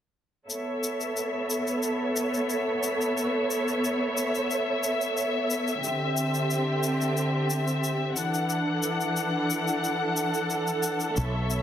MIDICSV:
0, 0, Header, 1, 4, 480
1, 0, Start_track
1, 0, Tempo, 666667
1, 361, Time_signature, 4, 2, 24, 8
1, 8369, End_track
2, 0, Start_track
2, 0, Title_t, "String section"
2, 0, Program_c, 0, 48
2, 354, Note_on_c, 0, 69, 61
2, 355, Note_on_c, 0, 59, 65
2, 356, Note_on_c, 0, 76, 74
2, 358, Note_on_c, 0, 73, 64
2, 4169, Note_off_c, 0, 59, 0
2, 4169, Note_off_c, 0, 69, 0
2, 4171, Note_off_c, 0, 73, 0
2, 4194, Note_on_c, 0, 60, 65
2, 4197, Note_on_c, 0, 67, 63
2, 4200, Note_on_c, 0, 50, 72
2, 5850, Note_off_c, 0, 76, 0
2, 5861, Note_off_c, 0, 60, 0
2, 5862, Note_off_c, 0, 67, 0
2, 5864, Note_off_c, 0, 50, 0
2, 5879, Note_on_c, 0, 69, 66
2, 5880, Note_on_c, 0, 52, 70
2, 5880, Note_on_c, 0, 78, 74
2, 5883, Note_on_c, 0, 62, 65
2, 8019, Note_off_c, 0, 52, 0
2, 8019, Note_off_c, 0, 78, 0
2, 8021, Note_off_c, 0, 62, 0
2, 8032, Note_on_c, 0, 59, 66
2, 8034, Note_on_c, 0, 73, 63
2, 8034, Note_on_c, 0, 76, 79
2, 8369, Note_off_c, 0, 59, 0
2, 8369, Note_off_c, 0, 69, 0
2, 8369, Note_off_c, 0, 73, 0
2, 8369, Note_off_c, 0, 76, 0
2, 8369, End_track
3, 0, Start_track
3, 0, Title_t, "Fretless electric bass"
3, 0, Program_c, 1, 35
3, 8044, Note_on_c, 1, 35, 84
3, 8369, Note_off_c, 1, 35, 0
3, 8369, End_track
4, 0, Start_track
4, 0, Title_t, "Drums"
4, 361, Note_on_c, 9, 69, 40
4, 433, Note_off_c, 9, 69, 0
4, 603, Note_on_c, 9, 69, 67
4, 675, Note_off_c, 9, 69, 0
4, 723, Note_on_c, 9, 69, 26
4, 795, Note_off_c, 9, 69, 0
4, 841, Note_on_c, 9, 69, 39
4, 913, Note_off_c, 9, 69, 0
4, 1082, Note_on_c, 9, 69, 67
4, 1154, Note_off_c, 9, 69, 0
4, 1204, Note_on_c, 9, 69, 28
4, 1276, Note_off_c, 9, 69, 0
4, 1316, Note_on_c, 9, 69, 40
4, 1388, Note_off_c, 9, 69, 0
4, 1559, Note_on_c, 9, 69, 68
4, 1631, Note_off_c, 9, 69, 0
4, 1685, Note_on_c, 9, 69, 30
4, 1757, Note_off_c, 9, 69, 0
4, 1798, Note_on_c, 9, 69, 37
4, 1870, Note_off_c, 9, 69, 0
4, 2041, Note_on_c, 9, 69, 66
4, 2113, Note_off_c, 9, 69, 0
4, 2168, Note_on_c, 9, 69, 28
4, 2240, Note_off_c, 9, 69, 0
4, 2286, Note_on_c, 9, 69, 38
4, 2358, Note_off_c, 9, 69, 0
4, 2525, Note_on_c, 9, 69, 69
4, 2597, Note_off_c, 9, 69, 0
4, 2650, Note_on_c, 9, 69, 27
4, 2722, Note_off_c, 9, 69, 0
4, 2768, Note_on_c, 9, 69, 39
4, 2840, Note_off_c, 9, 69, 0
4, 3007, Note_on_c, 9, 69, 67
4, 3079, Note_off_c, 9, 69, 0
4, 3131, Note_on_c, 9, 69, 28
4, 3203, Note_off_c, 9, 69, 0
4, 3246, Note_on_c, 9, 69, 42
4, 3318, Note_off_c, 9, 69, 0
4, 3483, Note_on_c, 9, 69, 66
4, 3555, Note_off_c, 9, 69, 0
4, 3609, Note_on_c, 9, 69, 32
4, 3681, Note_off_c, 9, 69, 0
4, 3724, Note_on_c, 9, 69, 41
4, 3796, Note_off_c, 9, 69, 0
4, 3964, Note_on_c, 9, 69, 67
4, 4036, Note_off_c, 9, 69, 0
4, 4087, Note_on_c, 9, 69, 30
4, 4159, Note_off_c, 9, 69, 0
4, 4204, Note_on_c, 9, 69, 43
4, 4276, Note_off_c, 9, 69, 0
4, 4444, Note_on_c, 9, 69, 71
4, 4516, Note_off_c, 9, 69, 0
4, 4567, Note_on_c, 9, 69, 29
4, 4639, Note_off_c, 9, 69, 0
4, 4684, Note_on_c, 9, 69, 39
4, 4756, Note_off_c, 9, 69, 0
4, 4921, Note_on_c, 9, 69, 69
4, 4993, Note_off_c, 9, 69, 0
4, 5048, Note_on_c, 9, 69, 30
4, 5120, Note_off_c, 9, 69, 0
4, 5164, Note_on_c, 9, 69, 41
4, 5236, Note_off_c, 9, 69, 0
4, 5402, Note_on_c, 9, 69, 73
4, 5474, Note_off_c, 9, 69, 0
4, 5526, Note_on_c, 9, 69, 31
4, 5598, Note_off_c, 9, 69, 0
4, 5644, Note_on_c, 9, 69, 38
4, 5716, Note_off_c, 9, 69, 0
4, 5880, Note_on_c, 9, 69, 71
4, 5952, Note_off_c, 9, 69, 0
4, 6005, Note_on_c, 9, 69, 29
4, 6077, Note_off_c, 9, 69, 0
4, 6117, Note_on_c, 9, 69, 42
4, 6189, Note_off_c, 9, 69, 0
4, 6358, Note_on_c, 9, 69, 68
4, 6430, Note_off_c, 9, 69, 0
4, 6485, Note_on_c, 9, 69, 28
4, 6557, Note_off_c, 9, 69, 0
4, 6600, Note_on_c, 9, 69, 41
4, 6672, Note_off_c, 9, 69, 0
4, 6843, Note_on_c, 9, 69, 67
4, 6915, Note_off_c, 9, 69, 0
4, 6967, Note_on_c, 9, 69, 30
4, 7039, Note_off_c, 9, 69, 0
4, 7086, Note_on_c, 9, 69, 42
4, 7158, Note_off_c, 9, 69, 0
4, 7322, Note_on_c, 9, 69, 74
4, 7394, Note_off_c, 9, 69, 0
4, 7445, Note_on_c, 9, 69, 31
4, 7517, Note_off_c, 9, 69, 0
4, 7561, Note_on_c, 9, 69, 41
4, 7633, Note_off_c, 9, 69, 0
4, 7684, Note_on_c, 9, 69, 28
4, 7756, Note_off_c, 9, 69, 0
4, 7798, Note_on_c, 9, 69, 68
4, 7870, Note_off_c, 9, 69, 0
4, 7920, Note_on_c, 9, 69, 29
4, 7992, Note_off_c, 9, 69, 0
4, 8039, Note_on_c, 9, 69, 40
4, 8111, Note_off_c, 9, 69, 0
4, 8283, Note_on_c, 9, 69, 69
4, 8355, Note_off_c, 9, 69, 0
4, 8369, End_track
0, 0, End_of_file